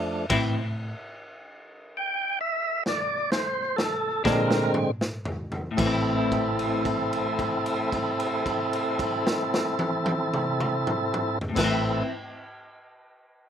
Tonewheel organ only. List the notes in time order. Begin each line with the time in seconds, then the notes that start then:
Already playing: F3 A3 D4
1.97 G5
2.41 E5
2.88 D5
3.32 C5
3.76 A4
4.25 D3 G#3 C4 A#4
5.77 C4 E4 A4
11.55 C4 E4 A4